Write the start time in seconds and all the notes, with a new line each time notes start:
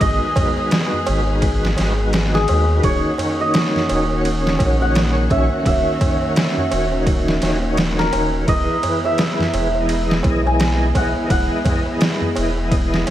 Already playing: D#3 G#3 B3 G#4 C#5
0.01 G#1 D#4 F#4 D#5, kick, ride, tabla na
0.06 B4
0.36 kick, ride, tabla na, tabla ge
0.57 tabla na
0.71 snare, ride, tabla na
0.93 tabla ge
1.06 G#1, ride, tabla na
1.27 G#3 D#4 F#4 B4, tabla na
1.42 kick, ride, tabla na
1.65 snare
1.77 G#1, snare, ride, tabla na
1.96 G#3 D#4, tabla na
2.01 F#4 B4
2.13 snare, ride, tabla na
2.34 G#4, snare
2.48 D#2, ride, tabla na
2.69 tabla na
2.80 D#1 D#3 A#3 C#4 D#4 F#4 C#5, kick, ride, tabla na
2.85 F#4 C#5
3.18 ride, tabla na, tabla ge
3.40 D#5, tabla na
3.54 snare, ride, tabla na
3.75 snare, tabla ge
3.89 D#1, ride, tabla na
4.07 D#3 C#4, tabla na
4.12 F#4 C#5
4.24 ride, tabla na
4.47 snare
4.59 A#1, kick, ride, tabla na
4.80 F#5, tabla na
4.95 snare, ride, tabla na
5.30 A#1 E5, kick, ride, tabla na
5.50 tabla na
5.63 D#1 D#3 C#4 E5, kick, ride, tabla na
5.67 F#4 C#5
6.00 kick, ride, tabla na, tabla ge
6.22 tabla na
6.35 snare, ride, tabla na
6.57 tabla ge
6.71 D#1, ride, tabla na
6.91 D#3 D#4 F#4 C#5, tabla na
7.06 kick, ride, tabla na
7.28 snare
7.42 D#1, snare, ride, tabla na
7.60 D#3 D#4, tabla na
7.65 F#4 C#5
7.77 snare, ride, tabla na
7.99 A#4, snare
8.13 D#1, ride, tabla na
8.33 tabla na
8.45 E1 E3 G#3 E4 D#5, kick, ride
8.49 B3 G#4 B4, tabla na
8.83 ride, tabla na, tabla ge
9.04 E5, tabla na
9.18 snare, ride, tabla na
9.39 snare, tabla ge
9.53 E1, ride, tabla na
9.72 E3 E4, tabla na
9.77 G#4 D#5
9.89 ride, tabla na
10.11 snare
10.23 B1, kick, ride, tabla na
10.45 G#5, tabla na
10.60 snare, ride, tabla na
10.95 B1 F#5, kick, ride, tabla na
11.15 tabla na
11.27 E1 E3 E4 F#5, kick, ride, tabla na
11.32 G#4 D#5
11.64 kick, ride, tabla na, tabla ge
11.86 tabla na
12.00 snare, ride, tabla na
12.21 tabla ge
12.35 E1, ride, tabla na
12.56 E3 E4 G#4 D#5, tabla na
12.72 kick, ride, tabla na
12.94 snare
13.07 ride, tabla na